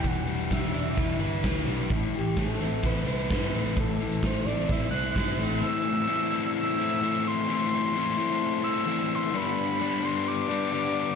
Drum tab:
HH |x-xxx-x-x-x-x-xx|x-x-x-x-x-xxx-xx|x-xxx-x-x-x-x-xx|----------------|
SD |----o-------o---|----o-------o---|----o--o----o---|----------------|
BD |o---o---o---o---|o---o---o---o---|o---o---o---o---|----------------|

HH |----------------|----------------|
SD |----------------|----------------|
BD |----------------|----------------|